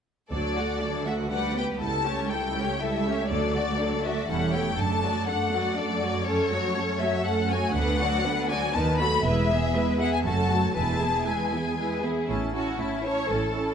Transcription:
0.31 cello section D2, double bass section D2, viola section F#3 D4, violin section A4 D5
0.56 viola section A3 F#4, violin section F#4 F#5
0.81 viola section F#3 D4, violin section A4 D5
1.06 viola section A3 F#4, violin section F#4 E5 F#5
1.31 viola section G3 D4, violin section B4 D5 F#5
1.55 viola section B3, violin section G4 B4 G5
1.80 double bass section C#2, cello section C#2, viola section G3 E4, violin section A4 A5
2.05 viola section A3 C#4, violin section G4 C#5
2.31 viola section G3 E4, violin section A4 G5
2.56 viola section A3 C#4, violin section G4 C#5
2.80 viola section G3 E4, violin section A4 E5
3.06 viola section A3 C#4, violin section G4 C#5
3.30 cello section D2, double bass section D2, viola section F#3 D4, violin section A4 D5
3.56 viola section A3 F#4, violin section F#4 D5
3.80 viola section F#3 D4, violin section A4
4.04 viola section A3 F#4, violin section F#4 D5 E5
4.29 double bass section E1, cello section E2, viola section G3 C#4, violin section E4 A4 F#5
4.54 viola section A3 E4, violin section G4 C#5 G5
4.77 double bass section F#1, cello section F#2, viola section A3 D4, violin section A4 A5
5.03 viola section F#3 A3, violin section F#4 D5
5.28 viola section A3 D4, violin section A4 F#5
5.53 viola section F#3 A3, violin section F#4 D5
5.77 viola section A3 D4, violin section A4 D5
6.02 viola section F#3 A3, violin section F#4 D5
6.26 viola section A3 C#4, violin section A4 C#5
6.51 viola section F#3 A3, violin section F#4 C#5
6.76 viola section A3 C#4, violin section A4
7.01 viola section F#3 A3, violin section F#4 C#5 E5
7.26 viola section A3 C#4, violin section A4 F#5
7.50 viola section F#3 A3, violin section F#4 C#5 G#5
7.74 double bass section D2, cello section D2, viola section D3 B3, violin section D4 B4 F#5
8.00 viola section F#3 D4, violin section F#4 D5
8.25 viola section D3 B3, violin section D4 B4
8.50 viola section F#3 D4, violin section F#4 D5 G#5
8.74 cello section D#2, double bass section D#2, viola section D#3 B3, violin section D#4 B4 A5
9.00 viola section F#3 A3, violin section F#4 A4 B5
9.25 double bass section E1, cello section E2, viola section G#3 E4, violin section B4 E5
9.51 viola section B3 G#4, violin section G#4 E5
9.75 viola section G#3 E4, violin section B4
10.00 viola section B3 G#4, violin section G#4 E5 F#5
10.13 violin section G#5
10.25 double bass section F#1, cello section F#2, viola section A3 C#4, violin section F#4 A4 A5
10.51 viola section F#3 A3, violin section F#4 A4
10.76 double bass section E1, cello section E2, viola section G#3 E4, violin section G#4 B4 A5
11.02 viola section B3 G#4, violin section E4 G#4
11.27 viola section G#3 E4, violin section G#4 B4 G#5
11.53 viola section B3 G#4, violin section E4 G#4
11.78 viola section G#3 E4, violin section G#4 B4
12.03 viola section B3 G#4, violin section E4 G#4
12.28 double bass section A1, cello section A2, viola section C#4 E4, violin section A5
12.54 viola section C#4 E4, violin section F#4 A5
12.79 double bass section A1, cello section A2, viola section C#4 E4, violin section E4 A5
13.03 viola section C#4 E4, violin section C#5 A5
13.28 double bass section A1, cello section A2, viola section C#4 E4, violin section A4 A5
13.53 viola section C#4 E4, violin section A5

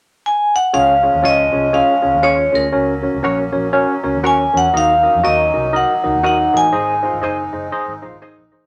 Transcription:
0.26 vibraphone G#5
0.56 vibraphone F#5
0.73 fingered electric bass C#2, accordion F3 G#3 C#4, tine electric piano C#4 F4 G#4 C#5, vibraphone F5
1.03 tine electric piano C#4 F4 G#4 C#5
1.14 fingered electric bass D#2
1.23 fingered electric bass C#2, tine electric piano C#4 F4 G#4 C#5, clean electric guitar F4 G#4 C#5, vibraphone D#5
1.52 fingered electric bass C2, tine electric piano C#4 F4 G#4 C#5
1.73 tine electric piano C#4 F4 G#4 C#5, vibraphone F5
2.02 fingered electric bass C#2, tine electric piano C#4 F4 G#4 C#5
2.14 fingered electric bass D#2
2.23 tine electric piano C#4 F4 G#4 C#5, clean electric guitar F4 G#4 C#5, vibraphone C#5
2.52 fingered electric bass D2, tine electric piano C#4 F4 G#4 C#5, vibraphone A#4
2.72 fingered electric bass C#2, accordion F#3 A#3, tine electric piano C#4 F#4 A#4 C#5
3.02 tine electric piano C#4 F#4 A#4 C#5
3.14 fingered electric bass C#2
3.23 fingered electric bass A#1, tine electric piano C#4 F#4 A#4 C#5, clean electric guitar F#4 A#4 C#5
3.52 fingered electric bass A#1, tine electric piano C#4 F#4 A#4 C#5
3.73 tine electric piano C#4 F#4 A#4 C#5
4.03 fingered electric bass C#2, tine electric piano C#4 F#4 A#4 C#5
4.14 fingered electric bass D#2
4.23 tine electric piano C#4 F#4 A#4, clean electric guitar F#4 A#4 C#5, vibraphone G#5
4.53 fingered electric bass E2, tine electric piano C#4 F#4 A#4 C#5
4.57 vibraphone F#5
4.74 fingered electric bass D#2, accordion D#3 D#4, tine electric piano D#4 F#4 A#4 D#5, clean electric guitar D#4, vibraphone F5
5.03 clean electric guitar C#4, tine electric piano D#4 F#4 A#4 D#5
5.15 fingered electric bass F2
5.23 fingered electric bass D#2, clean electric guitar C#4 F#4 A#4 D#5, tine electric piano D#4 F#4 A#4 D#5, vibraphone D#5
5.54 fingered electric bass C2, tine electric piano D#4 F#4 A#4 D#5
5.73 tine electric piano D#4 F#4 A#4 D#5, vibraphone F#5
6.04 fingered electric bass C#2, tine electric piano D#4 F#4 A#4 D#5, clean electric guitar D#4
6.15 fingered electric bass D#2
6.23 tine electric piano D#4 F#4 A#4 D#5, clean electric guitar D#4 F#4 A#4 D#5, vibraphone F#5
6.53 fingered electric bass A1, tine electric piano D#4 F#4 A#4 D#5, vibraphone G#5
6.72 fingered electric bass G#1, accordion G#3 C4 D#4, tine electric piano D#4 G#4 C5 D#5, clean electric guitar G#4
7.03 tine electric piano D#4 G#4 C5 D#5, clean electric guitar F4
7.13 fingered electric bass G#1
7.22 fingered electric bass F#1, tine electric piano D#4 G#4 C5 D#5, clean electric guitar D#4 G#4 C5 D#5
7.53 fingered electric bass F#1, tine electric piano D#4 G#4 C5 D#5
7.72 tine electric piano D#4 G#4 C5 D#5
7.88 fingered electric bass G#1
8.02 fingered electric bass A#1, tine electric piano D#4 G#4 C5 D#5, clean electric guitar F4
8.13 fingered electric bass G#1
8.22 tine electric piano D#4 G#4 C5 D#5, clean electric guitar D#4 G#4 C5 D#5
8.38 fingered electric bass A#1
8.52 tine electric piano D#4 G#4 C5 D#5

